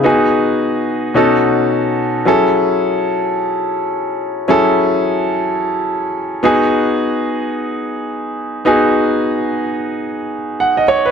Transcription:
0.04 1.13 B3 medium
0.04 1.13 D#4 medium
0.04 1.14 F#4 medium
0.04 1.14 G#4 medium
1.14 2.24 B2 medium
1.14 2.24 C#4 medium
1.14 2.25 D#4 medium
1.14 2.25 F#4 medium
1.14 2.25 A4 medium
2.25 4.44 F#3 medium
2.25 4.45 C#4 medium
2.25 4.45 E4 medium
2.25 4.45 G#4 medium
2.25 4.46 A4 medium
4.48 6.39 F#3 medium
4.48 6.39 C#4 medium
4.48 6.40 E4 medium
4.48 6.40 G#4 medium
4.48 6.40 A4 medium
6.43 8.61 B3 medium
6.43 8.62 D#4 medium
6.43 8.62 F#4 medium
6.43 8.63 G#4 medium
8.65 10.84 B3 medium
8.65 10.84 D#4 medium
8.65 10.84 F#4 medium
8.65 10.85 G#4 medium
10.60 10.77 F#5 medium
10.77 10.87 D#5 medium
10.88 11.05 C#5 medium
11.06 11.11 B4 medium

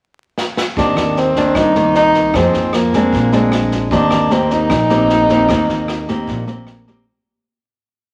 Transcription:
0.38 snare soft
0.57 snare medium
0.77 0.95 D#2 medium
0.77 1.36 D#3 medium
0.77 1.33 A#3 medium
0.77 1.33 C4 soft
0.77 1.20 D4 medium
0.77 1.34 G4 medium
0.77 kick medium
0.77 snare soft
0.96 1.51 D#2 medium
0.96 cross-stick medium
0.96 snare soft
1.16 1.58 C4 medium
1.16 snare soft
1.35 1.73 D#3 medium
1.35 1.73 A#3 medium
1.35 1.73 D4 medium
1.35 kick soft
1.35 snare soft
1.55 2.30 C2 medium
1.55 2.33 C3 medium
1.55 1.96 D#4 medium
1.55 kick medium
1.55 cross-stick medium
1.55 snare soft
1.75 2.32 D#3 medium
1.75 2.32 A#3 medium
1.75 snare soft
1.95 2.37 D#4 loud
1.95 snare soft
2.14 kick soft
2.14 snare soft
2.34 2.52 F2 medium
2.34 2.94 F3 soft
2.34 2.74 A#3 medium
2.34 2.76 C4 medium
2.34 2.74 D#4 soft
2.34 2.74 G#4 medium
2.34 kick medium
2.34 cross-stick medium
2.34 snare soft
2.53 3.09 F2 medium
2.53 snare soft
2.73 3.73 A#3 medium
2.73 cross-stick medium
2.73 snare soft
2.93 3.30 G#3 medium
2.93 3.30 C4 medium
2.93 3.31 D4 medium
2.93 kick soft
2.93 snare soft
3.13 3.88 A#1 medium
3.13 3.90 A#2 soft
3.13 kick medium
3.13 snare soft
3.32 3.88 G#3 medium
3.32 3.89 C4 medium
3.32 3.89 D4 medium
3.32 snare soft
3.52 cross-stick medium
3.52 snare soft
3.71 kick soft
3.71 snare soft
3.91 4.10 D#2 medium
3.91 4.68 D#3 medium
3.91 4.28 A#3 medium
3.91 4.28 C4 medium
3.91 4.34 D4 medium
3.91 4.28 G4 medium
3.91 kick medium
3.91 snare soft
4.11 4.66 D#2 medium
4.11 cross-stick medium
4.11 snare soft
4.30 4.70 A#3 soft
4.30 4.70 C4 medium
4.30 4.54 C4 medium
4.30 4.70 G4 medium
4.30 snare soft
4.50 6.68 D#4 loud
4.50 kick soft
4.50 snare soft
4.70 5.45 A#1 medium
4.70 5.47 A#2 medium
4.70 kick medium
4.70 cross-stick medium
4.70 snare soft
4.90 5.26 A#3 medium
4.90 5.26 C4 medium
4.90 5.27 G4 medium
4.90 snare soft
5.10 snare soft
5.29 5.46 A#3 medium
5.29 5.46 C4 medium
5.29 5.46 G4 medium
5.29 kick soft
5.29 snare soft
5.49 5.67 D#2 medium
5.49 6.26 D#3 medium
5.49 6.05 A#3 medium
5.49 6.05 C4 soft
5.49 6.06 G4 medium
5.49 kick medium
5.49 cross-stick medium
5.49 snare soft
5.69 6.24 D#2 medium
5.69 snare soft
5.88 cross-stick medium
5.88 snare soft
6.08 6.45 A#3 medium
6.08 6.45 C4 medium
6.08 6.45 G4 medium
6.08 kick soft
6.08 snare soft
6.27 7.03 A#1 medium
6.27 7.05 A#2 medium
6.27 kick medium
6.27 snare soft
6.47 6.84 A#3 medium
6.47 6.84 C4 medium
6.47 6.84 G4 medium
6.47 snare soft
6.67 cross-stick medium
6.67 snare soft
6.87 7.04 A#3 medium
6.87 7.04 C4 medium
6.87 7.04 G4 medium
6.87 kick soft
6.87 snare soft

